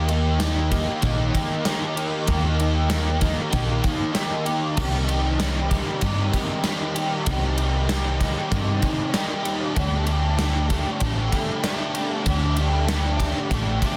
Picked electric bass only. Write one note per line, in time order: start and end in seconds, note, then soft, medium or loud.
0.00 0.84 D#2 loud
1.03 1.29 A#1 medium
2.28 3.34 D#2 medium
3.53 3.79 A#1 medium
4.78 5.83 C2 loud
6.02 6.29 G2 medium
7.27 8.33 C2 medium
8.52 8.78 G2 medium
9.77 10.83 D2 loud
11.01 11.28 A1 loud
12.26 13.32 D2 loud
13.51 13.78 A1 medium